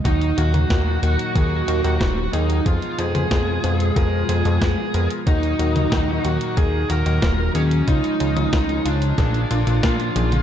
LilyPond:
<<
  \new Staff \with { instrumentName = "Lead electric guitar" } { \time 4/4 \key ees \minor \tempo 4 = 92 ees'8 ges'4. ges'4 ges'8 ees'8 | f'8 aes'4. aes'4 aes'8. r16 | ees'4. ges'8 aes'8 bes'4 des'8 | ees'4. d'4. f'4 | }
  \new Staff \with { instrumentName = "Electric grand piano" } { \time 4/4 \key ees \minor <ees bes ees' ges'>8 <ees bes ees' ges'>16 <ees bes ees' ges'>16 <ees bes ees' ges'>8 <ees bes ees' ges'>8 <ees bes ees' aes'>8 <ees bes ees' ges'>16 <ees bes ees' ges'>16 <ees bes ees' f'>16 r16 <bes ees' aes'>8 | <f ces' f' aes'>8 <f ces' f' aes'>16 <f ces' f' aes'>16 <f ces' f' aes'>8 <f ces' f' aes'>8 <f ces' f' bes'>8 <f ces' f' aes'>16 <f ces' f' aes'>16 <f ces' f' aes'>16 r16 <ces' f' bes'>8 | <ees bes ees' ges'>8 <ees bes ees' ges'>16 <ees bes ees' ges'>16 <ees bes ees' ges'>8 <ees bes ees' ges'>8 <ees bes ees' aes'>8 <ees bes ees' ges'>16 <ees bes ees' ges'>16 <ees bes ees' f'>16 r16 <bes ees' aes'>8 | <des des' ees' f'>8 <des des' ees' f'>16 <des des' ees' f'>16 <des des' ees' f'>8 <des' ees' f'>8 <bes, bes d' aes'>8 <bes, bes d' f'>16 <bes, bes d' f'>16 <bes, bes d' f'>16 r16 <ees bes d' aes'>8 | }
  \new Staff \with { instrumentName = "Analog synth pad" } { \clef bass \time 4/4 \key ees \minor << { ges'1 | aes'1 | ges'1 | f'1 | } \\ { <bes, ees ges ees'>1 | <ces f aes f'>1 | <bes, ees ges ees'>1 | <ees f aes des''>2 <bes, d d'>2 | } >> }
  \new Staff \with { instrumentName = "Analog synth bass" } { \clef bass \time 4/4 \key ees \minor ees,8 ees,8 ees,8 ees,16 r16 ees,8 ees,16 ees,16 ees,,8 ees,8 | f,16 r16 f,8 f,8 f,8 f,8 f,16 f,16 f,16 r16 f,16 r16 | ees,8 ees,8 ees,8 ees,16 r16 ees,8 ees,16 ees,16 ees,,8 ees,8 | des,16 r16 des,8 des,8 des,8 bes,,8 bes,,16 bes,,16 bes,8 bes,,8 | }
  \new DrumStaff \with { instrumentName = "Drums" } \drummode { \time 4/4 <hh bd>16 hh16 hh16 <hh toml>16 <hh bd sn>8 hh16 hh16 <hh bd>8 hh16 hh16 <hh bd sn>8 hh16 hh16 | <hh bd>16 hh16 hh16 <hh toml>16 <hh bd sn>8 hh16 hh16 <hh bd>8 hh16 hh16 <hh bd sn>8 hh16 hh16 | <hh bd>16 hh16 hh16 <hh toml>16 <hh bd sn>8 hh16 hh16 <hh bd>8 hh16 hh16 <hh bd sn>8 hh16 hh16 | <hh bd>16 hh16 hh16 <hh toml>16 <hh bd sn>16 hh16 hh16 hh16 <hh bd sn>16 hh16 hh16 hh16 <hh bd sn>16 hh16 <hh tommh>16 <hh toml>16 | }
>>